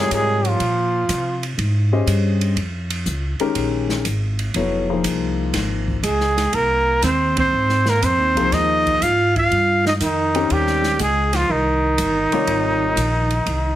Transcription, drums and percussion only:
0.11 hi-hat pedal soft
0.11 ride medium
0.45 ride soft
0.60 ride medium
1.09 hi-hat pedal medium
1.09 ride medium
1.43 ride soft
1.59 ride soft
2.07 hi-hat pedal medium
2.07 ride medium
2.41 ride soft
2.57 ride soft
2.90 ride medium
3.06 hi-hat pedal medium
3.40 ride soft
3.55 ride medium
3.89 snare soft
4.05 hi-hat pedal medium
4.05 ride medium
4.39 ride soft
4.54 ride medium
5.04 hi-hat pedal medium
5.04 ride medium
5.54 snare soft
5.54 ride medium
5.88 kick medium
6.03 hi-hat pedal medium
6.03 ride medium
6.20 snare soft
6.37 snare soft
6.37 ride soft
6.53 ride medium
7.02 snare soft
7.02 hi-hat pedal medium
7.02 ride medium
7.37 kick medium
7.37 ride medium
7.69 snare soft
7.86 snare soft
8.02 hi-hat pedal soft
8.02 ride medium
8.37 ride soft
8.52 snare soft
8.52 ride medium
8.86 kick soft
8.86 ride soft
9.02 hi-hat pedal medium
9.02 ride medium
9.36 kick medium
9.36 ride soft
9.52 ride soft
9.86 snare soft
10.01 hi-hat pedal medium
10.01 ride medium
10.35 ride soft
10.50 ride medium
10.67 snare soft
10.83 snare soft
10.99 hi-hat pedal medium
10.99 ride medium
11.33 snare soft
11.33 ride medium
11.98 hi-hat pedal medium
11.98 ride medium
12.32 ride soft
12.47 ride medium
12.97 hi-hat pedal medium
12.97 ride medium
13.31 ride soft
13.46 ride medium

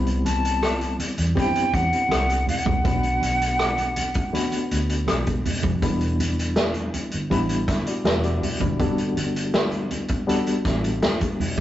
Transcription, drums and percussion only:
0.06 closed hi-hat soft
0.06 muted conga soft
0.24 closed hi-hat medium
0.24 high conga medium
0.45 closed hi-hat soft
0.62 cross-stick medium
0.62 closed hi-hat medium
0.62 muted conga soft
0.80 closed hi-hat soft
0.80 muted conga soft
0.99 closed hi-hat medium
0.99 high conga soft
1.18 closed hi-hat soft
1.36 kick medium
1.36 closed hi-hat medium
1.36 muted conga soft
1.36 high conga medium
1.55 closed hi-hat soft
1.74 kick medium
1.74 cross-stick soft
1.74 closed hi-hat medium
1.93 closed hi-hat soft
2.09 cross-stick loud
2.09 closed hi-hat medium
2.09 muted conga soft
2.09 high conga medium
2.28 closed hi-hat soft
2.28 muted conga soft
2.47 open hi-hat medium
2.47 high conga medium
2.47 low conga soft
2.66 kick medium
2.66 closed hi-hat soft
2.66 low conga medium
2.85 kick medium
2.85 closed hi-hat medium
2.85 muted conga soft
2.85 low conga medium
3.03 closed hi-hat soft
3.03 muted conga soft
3.21 closed hi-hat medium
3.21 high conga medium
3.42 closed hi-hat soft
3.59 cross-stick medium
3.59 closed hi-hat medium
3.59 muted conga soft
3.78 closed hi-hat soft
3.78 muted conga soft
3.96 closed hi-hat medium
3.96 high conga soft
4.14 kick medium
4.14 closed hi-hat soft
4.33 closed hi-hat medium
4.33 high conga medium
4.52 closed hi-hat soft
4.52 muted conga soft
4.71 closed hi-hat medium
4.89 closed hi-hat soft
5.07 cross-stick loud
5.07 closed hi-hat medium
5.07 muted conga soft
5.07 high conga medium
5.26 kick medium
5.26 closed hi-hat soft
5.26 muted conga soft
5.45 open hi-hat medium
5.45 high conga medium
5.45 low conga medium
5.63 kick medium
5.63 closed hi-hat soft
5.63 low conga medium
5.82 kick medium
5.82 closed hi-hat medium
5.82 muted conga soft
5.82 low conga medium
6.01 closed hi-hat soft
6.19 closed hi-hat medium
6.19 high conga medium
6.39 closed hi-hat soft
6.56 snare medium
6.56 closed hi-hat medium
6.56 muted conga soft
6.74 closed hi-hat soft
6.74 muted conga soft
6.93 closed hi-hat medium
6.93 high conga soft
7.11 closed hi-hat soft
7.31 kick medium
7.31 closed hi-hat medium
7.31 muted conga soft
7.31 high conga medium
7.49 closed hi-hat soft
7.49 muted conga soft
7.68 kick medium
7.68 snare soft
7.68 closed hi-hat medium
7.86 closed hi-hat medium
8.04 snare loud
8.04 closed hi-hat medium
8.04 high conga medium
8.23 closed hi-hat soft
8.42 open hi-hat medium
8.42 high conga soft
8.42 low conga soft
8.60 kick medium
8.60 closed hi-hat soft
8.60 low conga medium
8.80 kick medium
8.80 closed hi-hat medium
8.80 muted conga soft
8.80 low conga medium
8.98 closed hi-hat soft
8.98 muted conga soft
9.16 closed hi-hat medium
9.16 high conga medium
9.36 closed hi-hat soft
9.53 snare loud
9.53 closed hi-hat medium
9.53 muted conga soft
9.71 closed hi-hat soft
9.71 muted conga soft
9.91 closed hi-hat medium
9.91 high conga soft
10.08 kick medium
10.08 closed hi-hat soft
10.29 closed hi-hat medium
10.29 high conga medium
10.46 closed hi-hat soft
10.46 muted conga soft
10.65 kick medium
10.65 snare soft
10.65 closed hi-hat medium
10.84 closed hi-hat soft
11.02 snare loud
11.02 closed hi-hat medium
11.02 muted conga soft
11.02 high conga medium
11.21 kick medium
11.21 closed hi-hat medium
11.21 muted conga soft
11.40 open hi-hat medium
11.40 high conga soft
11.40 low conga medium
11.57 kick medium
11.57 low conga medium

